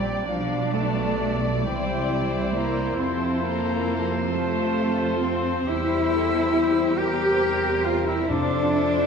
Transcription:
Already playing: A#1 A#2 G3 A#3 C4 G4 D5 G5
0.25 B1 B2 F3 D4 D5 F5
0.29 G3 D4
0.73 A3 A5
1.63 C2 C3 E3 G3 E4 C5 G5
2.54 A#3 A#5
2.98 F2 F3 C4 F4 A4 C5 C6
3.43 A#3 A#5
4.29 A3 F4 A4 A5
5.20 C4 C6
5.66 E2 C3 G3 E4 G4 C5 E6
6.12 A4
6.54 G4
6.97 G4 A#4 C5 G6
7.85 F4 F6
8.07 E4 E6
8.29 F2 F3 D4 F4 A4 C5 D6
8.74 E4 F4

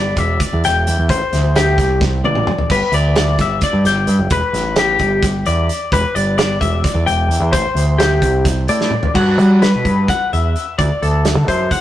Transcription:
Already playing: G1 D5
0.16 E1 E5, kick, closed hi-hat
0.40 D5, kick, closed hi-hat
0.53 E2
0.64 E1 G5, snare, closed hi-hat
0.87 E2, closed hi-hat
0.99 E2
1.09 A1 C5, kick, closed hi-hat
1.33 D2, snare, closed hi-hat
1.56 G4, snare, closed hi-hat
1.78 C2, kick, snare, closed hi-hat
2.01 kick, snare
2.24 A1 D5, high tom
2.35 mid tom
2.47 mid tom
2.58 floor tom
2.70 G1 B4, kick, closed hi-hat, splash
2.92 D2 D5, closed hi-hat
3.16 D5, snare, closed hi-hat
3.38 G1 E5, kick, snare, closed hi-hat
3.61 D5, kick, snare, closed hi-hat
3.73 G2
3.85 G1 G5, snare, closed hi-hat
4.07 G2, closed hi-hat
4.19 F#1
4.30 E1 B4, kick, closed hi-hat
4.53 A1, snare, closed hi-hat
4.76 G4, snare, closed hi-hat
4.99 G1, kick, closed hi-hat
5.23 kick, snare, closed hi-hat
5.46 E2 D5, closed hi-hat
5.69 closed hi-hat
5.92 E1 B4, kick, closed hi-hat
6.15 G1 D5, closed hi-hat
6.38 D5, snare, closed hi-hat
6.61 E1 E5, kick, closed hi-hat
6.84 D5, kick, snare, closed hi-hat
6.94 E2
7.06 E1 G5, closed hi-hat
7.28 E2, closed hi-hat
7.40 E2
7.52 A1 C5, kick, closed hi-hat
7.75 D2, closed hi-hat
7.98 G4, snare, closed hi-hat
8.22 C2, kick, closed hi-hat
8.45 kick, snare, closed hi-hat
8.68 A2 D5, closed hi-hat
8.81 snare
8.91 mid tom
9.03 floor tom
9.14 G2 F#4, kick, crash
9.39 G3, closed hi-hat
9.62 B4, snare, closed hi-hat
9.76 B2
9.85 G2, kick, closed hi-hat
10.08 F#5, kick, snare, closed hi-hat
10.33 E2 E5, closed hi-hat
10.56 closed hi-hat
10.79 D2 D5, kick, closed hi-hat
11.02 D2 A4, closed hi-hat
11.25 snare, closed hi-hat
11.37 D3
11.48 F#2 C5, kick, closed hi-hat
11.71 F#5, kick, closed hi-hat

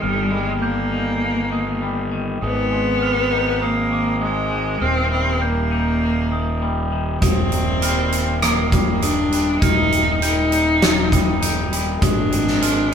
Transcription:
Already playing: D#4
0.00 G1 D#2 G3 F6
0.30 G3 G#3
0.61 A#3 G6
0.92 D#4
1.22 A#3
1.52 D#3 D#6
1.82 G3
2.12 D#3
2.41 G#1 G#2 B3 D#6
2.71 G#3
3.02 F6
3.31 D#4
3.61 A#3 D#6
3.91 D#3 D6
4.21 G#3 D#6
4.51 D#3
4.81 D#1 D#2 C4 F6
5.11 G3 C4
5.41 A#3 G6
5.71 D#4
6.02 A#3
6.31 D#3 D#6
6.62 G3
6.92 D#3
7.22 D#1 D#2 C4 D#6, kick, closed hi-hat
7.52 D#3, closed hi-hat
7.82 G3 F6, closed hi-hat
8.12 closed hi-hat
8.42 A#3 D#6, cross-stick, closed hi-hat
8.72 G3 D6, kick, closed hi-hat
9.02 D4 D#6, closed hi-hat
9.32 G3, closed hi-hat
9.62 D#1 D#2 D#4 F6, kick, closed hi-hat
9.92 D#3, closed hi-hat
10.22 G3 D#4 G6, closed hi-hat
10.52 D#4, closed hi-hat
10.82 A#3, snare, closed hi-hat
11.12 G3 D#6, kick, closed hi-hat
11.41 D#4, closed hi-hat
11.72 G3, closed hi-hat
12.01 G#1 G#2 D4 D#6, kick, closed hi-hat
12.31 D#3, closed hi-hat
12.48 snare
12.61 G#3 F6, closed hi-hat

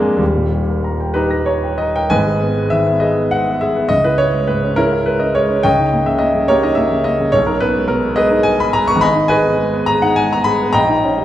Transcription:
Already playing: F2 F3 G#3 A#3 D4 G#4 A#4 A#5
0.02 G#5
0.17 D#1 D#2 G3
0.36 A#2
0.53 G4
0.70 A#4
0.84 A#5
1.00 G5
1.14 D#4 G4 B4 A#5
1.30 A#6
1.46 C#5 A#5
1.63 G5
1.78 D#5 A#5
1.96 A#4 G5
2.10 G#1 G#2 B4 D#5 G#5
2.27 G#4
2.41 B3
2.57 G#3
2.70 D#3 E5
2.87 B3
3.00 G#4 B4 D#5
3.16 B3
3.31 G#3 F#5
3.48 B3
3.61 G#4 E5
3.76 B3
3.89 C#2 D#5
4.04 E4 B4
4.18 C#4 C#5
4.33 G#3
4.47 G#2 B4
4.64 C#4
4.76 G#3 C#4 E4 A#4
4.93 E4
5.06 G#3 B4
5.20 C#4 D#5
5.35 G#3 C#5
5.50 C#4
5.63 C#2 C#5 D#5 G5
5.79 D#4
5.93 A#3
6.06 C#3 E5
6.19 A#3 D#5
6.34 C#3
6.48 A#3 G4 A#4 C#5
6.63 D#4 D#5
6.75 A#3 E5
6.92 C#3
7.04 A#3 D#5
7.20 C#3
7.32 B1 C#5
7.47 D#4 A#4
7.60 B3 B4
7.75 G#3
7.88 B2 A#4
8.03 B3
8.16 G#3 G#4 B4 D#5
8.31 D#4
8.43 G#3 G#5
8.60 B3 B5
8.73 G#3 A#5
8.88 B3 C#6
8.96 G#1
9.01 D#5 G#5 B5
9.16 D#4
9.28 G#4 B4 D#5 G#5
9.43 B3
9.57 G#3
9.73 B3
9.86 G#4 A#5
10.02 D#4 F#5
10.16 G#3 G#5
10.33 B3 A#5
10.44 G#4 B5
10.62 B3
10.73 A#1 D#5 G5 A#5
10.89 D#4
11.04 C#4
11.17 G3

